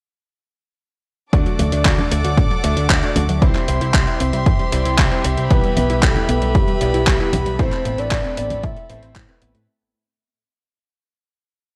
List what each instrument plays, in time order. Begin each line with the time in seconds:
1.33 picked electric bass D2, synth arpeggio sound D3, electric grand piano A3 D4 F#4 D5, string section A4 D5 F#5 D6, kick, closed hi-hat
1.46 synth arpeggio sound F#3, closed hi-hat
1.59 picked electric bass D2, synth arpeggio sound A3, closed hi-hat, high conga
1.72 picked electric bass D2, electric grand piano A3 D4 F#4 D5, synth arpeggio sound D4, closed hi-hat
1.85 picked electric bass D2, synth arpeggio sound F#4, kick, clap, closed hi-hat
1.98 synth arpeggio sound D4, closed hi-hat, high conga
2.11 picked electric bass D2, synth arpeggio sound A3, closed hi-hat
2.24 picked electric bass D2, synth arpeggio sound F#3, electric grand piano A3 D4 F#4 F#5, closed hi-hat
2.37 picked electric bass A1, synth arpeggio sound D3, kick, closed hi-hat
2.51 synth arpeggio sound F#3, closed hi-hat
2.64 picked electric bass D2, electric grand piano A3 D4 F#4 E5, synth arpeggio sound A3, closed hi-hat
2.77 picked electric bass D2, synth arpeggio sound D4, closed hi-hat
2.90 picked electric bass D2, synth arpeggio sound F#4, kick, clap, closed hi-hat
3.03 electric grand piano A3 D4 F#4 D5, synth arpeggio sound D4, closed hi-hat
3.16 picked electric bass D2, synth arpeggio sound A3, closed hi-hat, high conga
3.29 picked electric bass D2, synth arpeggio sound F#3, closed hi-hat
3.42 picked electric bass C2, synth arpeggio sound E3, electric grand piano G3 C4 E4 C5, string section G4 C5 E5 C6, kick, closed hi-hat
3.55 synth arpeggio sound G3, clap, closed hi-hat
3.68 picked electric bass C2, synth arpeggio sound C4, closed hi-hat
3.81 picked electric bass C2, electric grand piano G3 C4 E4 C5, synth arpeggio sound E4, closed hi-hat
3.94 picked electric bass C2, synth arpeggio sound G4, kick, clap, closed hi-hat
4.07 synth arpeggio sound E4, closed hi-hat
4.20 picked electric bass C2, synth arpeggio sound C4, closed hi-hat
4.33 picked electric bass C2, electric grand piano G3 C4 E4 E5, synth arpeggio sound G3, closed hi-hat
4.46 picked electric bass G1, synth arpeggio sound E3, kick, closed hi-hat
4.59 synth arpeggio sound G3, closed hi-hat
4.72 picked electric bass C2, electric grand piano G3 C4 E4 D5, synth arpeggio sound C4, closed hi-hat
4.85 picked electric bass C2, synth arpeggio sound E4, closed hi-hat
4.98 picked electric bass C2, synth arpeggio sound G4, kick, clap, closed hi-hat
5.12 electric grand piano G3 C4 E4 C5, synth arpeggio sound E4, closed hi-hat
5.24 picked electric bass C2, synth arpeggio sound C4, closed hi-hat
5.38 picked electric bass C2, synth arpeggio sound G3, closed hi-hat
5.50 picked electric bass B1, synth arpeggio sound E3, electric grand piano G3 B3 E4 B4, string section B4 B5, soft synth lead B4, kick, closed hi-hat
5.64 synth arpeggio sound G3, closed hi-hat
5.77 picked electric bass B1, synth arpeggio sound B3, closed hi-hat, high conga
5.90 picked electric bass B1, electric grand piano G3 B3 E4 B4, synth arpeggio sound E4, closed hi-hat
6.03 picked electric bass B1, synth arpeggio sound G4, soft synth lead A4, kick, clap, closed hi-hat
6.16 synth arpeggio sound E4, closed hi-hat, high conga
6.29 picked electric bass B1, synth arpeggio sound B3, closed hi-hat
6.42 picked electric bass B1, synth arpeggio sound G3, electric grand piano G3 B3 E4 E5, closed hi-hat
6.55 picked electric bass F#1, synth arpeggio sound E3, soft synth lead G4, kick, closed hi-hat
6.68 synth arpeggio sound G3, closed hi-hat
6.81 picked electric bass B1, electric grand piano G3 B3 E4 D5, synth arpeggio sound B3, closed hi-hat
6.94 picked electric bass B1, synth arpeggio sound E4, closed hi-hat
7.07 picked electric bass B1, synth arpeggio sound G4, kick, clap, closed hi-hat
7.20 electric grand piano G3 B3 E4 B4, synth arpeggio sound E4, closed hi-hat
7.33 picked electric bass B1, synth arpeggio sound B3, closed hi-hat, high conga
7.46 picked electric bass B1, synth arpeggio sound G3, closed hi-hat
7.59 picked electric bass A1, synth arpeggio sound E3, electric grand piano A3 C4 E4 C5, string section C4 A4, soft synth lead C5, kick, closed hi-hat
7.72 synth arpeggio sound A3, clap, closed hi-hat
7.85 picked electric bass A1, synth arpeggio sound B3, closed hi-hat
7.98 picked electric bass A1, electric grand piano A3 C4 E4 B4, synth arpeggio sound C4, soft synth lead D5, closed hi-hat
8.11 picked electric bass A1, synth arpeggio sound E4, kick, clap, closed hi-hat
8.24 synth arpeggio sound C4, closed hi-hat
8.37 picked electric bass A1, synth arpeggio sound B3, soft synth lead D5, closed hi-hat
8.50 picked electric bass A1, synth arpeggio sound A3, electric grand piano A3 C4 E4 D5, closed hi-hat, high conga
8.63 picked electric bass A2, synth arpeggio sound E3, soft synth lead E5, kick, closed hi-hat
8.77 synth arpeggio sound A3, closed hi-hat
8.90 picked electric bass A1, electric grand piano A3 C4 E4 C5, synth arpeggio sound B3, closed hi-hat
9.03 picked electric bass A1, synth arpeggio sound C4, closed hi-hat
9.16 picked electric bass A2, synth arpeggio sound E4, kick, clap, closed hi-hat
9.29 electric grand piano A3 C4 E4 B4, synth arpeggio sound C4, closed hi-hat
9.42 picked electric bass A1, synth arpeggio sound B3, closed hi-hat
9.55 picked electric bass A2, synth arpeggio sound A3, closed hi-hat